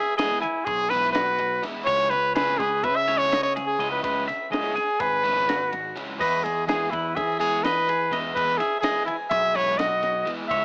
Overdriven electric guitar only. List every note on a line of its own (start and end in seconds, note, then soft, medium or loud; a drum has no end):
0.19 0.43 E3 medium
0.19 0.43 G#3 medium
0.19 0.42 B3 medium
0.19 0.41 E4 medium
0.43 muted overdriven electric guitar stroke medium
0.67 muted overdriven electric guitar stroke soft
0.91 1.15 E3 medium
0.91 1.15 G#3 medium
0.91 1.15 B3 medium
0.91 1.15 E4 loud
1.16 muted overdriven electric guitar stroke medium
1.40 muted overdriven electric guitar stroke medium
1.63 1.87 E3 medium
1.63 1.86 G#3 medium
1.63 1.87 B3 medium
1.63 1.87 E4 medium
1.87 2.11 C#3 medium
1.87 2.11 G#3 loud
1.87 2.11 C#4 loud
1.87 2.11 E4 loud
2.12 muted overdriven electric guitar stroke medium
2.35 2.59 C#3 medium
2.35 2.60 G#3 medium
2.35 2.60 C#4 medium
2.35 2.59 E4 medium
2.60 muted overdriven electric guitar stroke medium
2.84 muted overdriven electric guitar stroke medium
3.07 3.30 C#3 medium
3.07 3.31 G#3 medium
3.07 3.31 C#4 medium
3.07 3.31 E4 medium
3.32 muted overdriven electric guitar stroke medium
3.56 muted overdriven electric guitar stroke medium
3.79 4.02 C#3 medium
3.79 4.03 G#3 medium
3.79 4.03 C#4 medium
3.79 4.03 E4 loud
4.03 4.27 C#3 medium
4.03 4.27 G#3 medium
4.03 4.27 C#4 loud
4.03 4.26 E4 loud
4.27 muted overdriven electric guitar stroke medium
4.51 4.75 C#3 medium
4.51 4.76 G#3 medium
4.51 4.76 C#4 loud
4.51 4.75 E4 medium
4.76 muted overdriven electric guitar stroke medium
5.00 muted overdriven electric guitar stroke medium
5.24 5.46 C#3 medium
5.24 5.47 G#3 medium
5.24 5.47 C#4 medium
5.24 5.47 E4 medium
5.48 muted overdriven electric guitar stroke medium
5.73 muted overdriven electric guitar stroke soft
5.96 6.19 C#3 medium
5.96 6.18 G#3 medium
5.96 6.19 C#4 medium
5.96 6.19 E4 medium
6.19 6.43 E3 medium
6.19 6.44 G#3 medium
6.19 6.43 B3 loud
6.19 6.43 E4 loud
6.44 muted overdriven electric guitar stroke soft
6.67 6.92 E3 medium
6.67 6.92 G#3 medium
6.67 6.92 B3 medium
6.67 6.92 E4 loud
6.93 muted overdriven electric guitar stroke soft
7.16 muted overdriven electric guitar stroke soft
7.40 7.63 E3 medium
7.40 7.64 G#3 medium
7.40 7.64 B3 medium
7.40 7.64 E4 loud
7.65 muted overdriven electric guitar stroke medium
7.88 muted overdriven electric guitar stroke medium
8.11 8.34 E3 medium
8.11 8.35 G#3 loud
8.11 8.35 B3 loud
8.11 8.35 E4 medium
8.36 8.60 E3 medium
8.36 8.59 G#3 loud
8.36 8.58 B3 loud
8.36 8.58 E4 loud
8.59 muted overdriven electric guitar stroke soft
8.83 9.08 E3 medium
8.83 9.07 G#3 medium
8.83 9.06 B3 loud
8.83 9.06 E4 medium
9.07 muted overdriven electric guitar stroke soft
9.31 muted overdriven electric guitar stroke medium
9.55 9.78 E3 medium
9.55 9.78 G#3 medium
9.55 9.78 B3 medium
9.55 9.79 E4 medium
9.79 muted overdriven electric guitar stroke medium
10.03 muted overdriven electric guitar stroke medium
10.26 10.50 E3 medium
10.26 10.50 G#3 loud
10.26 10.51 B3 loud
10.26 10.50 E4 loud
10.51 10.65 C#3 loud
10.51 10.65 G#3 medium
10.51 10.65 C#4 medium
10.51 10.65 E4 medium